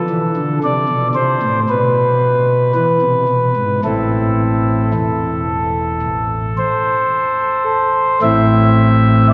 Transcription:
Already playing: A4
0.10 E3
0.36 D3
0.64 C3 D5
0.89 B2
1.15 C3 C5
1.43 A2
1.69 B2 B4
2.75 E3 B4
3.02 C3
3.29 B2
3.57 G#2
3.84 A1 A2 C4 E4 A4
4.94 E1 E2
6.03 A1
6.58 C5
8.22 A1 A2 A3 C4 E4 E5
9.30 D5

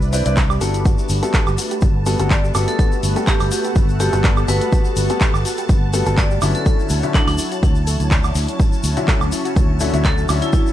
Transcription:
Already playing: C2 D4 E4 B4 D5 E5
0.02 shaker
0.13 C4 E4 B4 D5, open hi-hat, shaker
0.25 C2 C4 E4 B4 D5, closed hi-hat, shaker
0.37 D5, kick, clap, closed hi-hat, shaker
0.50 G4, high woodblock, shaker
0.61 G1 G3 B3 F#4 A4, open hi-hat, shaker
0.74 closed hi-hat, shaker
0.85 A3 B3 F#4 B4 A5, kick, closed hi-hat, shaker
0.98 shaker
1.09 G1, open hi-hat, shaker
1.13 A4
1.22 G3 B3 F#4 G4 A4 F#5, closed hi-hat, shaker
1.34 A4, kick, clap, closed hi-hat, shaker
1.47 G1 G4, high woodblock, shaker
1.58 F#4, open hi-hat, shaker
1.71 G4, closed hi-hat, shaker
1.81 G1, kick, closed hi-hat, shaker
2.06 G3 B3 F#4 A4, open hi-hat, shaker
2.19 G1 G3 B3 F#4 A4, closed hi-hat, shaker
2.30 D5, kick, clap, closed hi-hat, shaker
2.44 G4, shaker
2.55 G1 G3 B3 F#4 A4, open hi-hat, high woodblock, shaker
2.68 A4, closed hi-hat, shaker
2.79 F#4 A4, kick, closed hi-hat, shaker
2.92 shaker
3.03 G1, open hi-hat, shaker
3.16 G3 B3 F#4 G4 A4, closed hi-hat, shaker
3.27 G4 A4, kick, clap, closed hi-hat, shaker
3.40 G1 G4, open hi-hat, high woodblock, shaker
3.51 F#4 G4, open hi-hat, shaker
3.64 G4, closed hi-hat, shaker
3.76 G1, kick, closed hi-hat, shaker
3.89 shaker
4.00 G3 B3 F#4 G4 A4, open hi-hat, shaker
4.13 G1 G3 B3 F#4 A4, closed hi-hat, shaker
4.24 D5, kick, clap, closed hi-hat, shaker
4.37 G4, high woodblock, shaker
4.48 G1 G3 B3 F#4 A4 B4, open hi-hat, shaker
4.61 closed hi-hat, shaker
4.72 F#4, kick, closed hi-hat, shaker
4.85 shaker
4.96 G1, open hi-hat, shaker
5.09 G3 B3 F#4 G4 A4, closed hi-hat, shaker
5.21 A4, kick, clap, closed hi-hat, shaker
5.34 G1 G4, high woodblock, shaker
5.45 F#4, open hi-hat, shaker
5.58 G4, closed hi-hat, shaker
5.69 G1, kick, closed hi-hat, shaker
5.93 G3 B3 F#4 A4, open hi-hat, shaker
6.06 G1 G3 B3 F#4 A4, closed hi-hat, shaker
6.17 D5, kick, clap, closed hi-hat, shaker
6.31 G4, shaker
6.42 G1 D3 F#3 C#4 E4, open hi-hat, high woodblock, shaker
6.55 A4, closed hi-hat, shaker
6.66 F#3 C#4 E4 A4 C#5, kick, closed hi-hat, shaker
6.79 shaker
6.89 D2, open hi-hat, shaker
6.98 F#4
7.03 D3 F#3 C#4 E4 F#4, closed hi-hat, shaker
7.14 D4 A4 E5, kick, clap, closed hi-hat, shaker
7.27 D2 D4 F#4, open hi-hat, high woodblock, shaker
7.38 E4, open hi-hat, shaker
7.52 F#4, closed hi-hat, shaker
7.63 D2, kick, closed hi-hat, shaker
7.75 shaker
7.87 A4, open hi-hat, shaker
8.00 D2, closed hi-hat, shaker
8.11 D5, kick, clap, closed hi-hat, shaker
8.24 F#4, high woodblock, shaker
8.35 D2, open hi-hat, shaker
8.48 closed hi-hat, shaker
8.59 E4, kick, closed hi-hat, shaker
8.72 shaker
8.84 D2, open hi-hat, shaker
8.97 D3 F#3 C#4 E4 F#4, closed hi-hat, shaker
9.08 A4, kick, clap, closed hi-hat, shaker
9.21 D2 F#4, high woodblock, shaker
9.32 E4, open hi-hat, shaker
9.45 F#4, closed hi-hat, shaker
9.56 D2, kick, closed hi-hat, shaker
9.80 D3 F#3 C#4 E4 A4, open hi-hat, shaker
9.93 D2 D3 F#3 C#4 E4, closed hi-hat, shaker
10.05 A4 D5, kick, clap, closed hi-hat, shaker
10.18 F#4, shaker
10.29 D2 D3 F#3 C#4 E4, open hi-hat, high woodblock, shaker
10.42 E4, closed hi-hat, shaker
10.53 E4, kick, closed hi-hat, shaker
10.67 shaker

